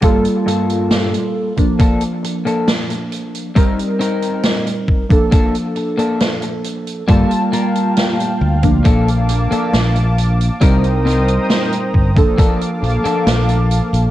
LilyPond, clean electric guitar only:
\new Staff \with { instrumentName = "Clean electric guitar" } { \time 4/4 \key bes \major \tempo 4 = 68 <g, bes f' a'>16 r16 <g, bes f' a'>8. r8. <bes d' a'>16 r8 <bes d' a'>16 r4 | <c' ees' bes'>16 r16 <c' ees' bes'>8. r8. <bes d' a'>16 r8 <bes d' a'>16 r4 | <bes f' a'>16 r16 <bes f' bes'>8. r8. <bes d' a'>16 r8 <bes d' a'>16 r4 | <c' ees' bes'>16 r16 <c' ees' bes'>8. r8. <bes d' a'>16 r8 <bes d' a'>16 r4 | }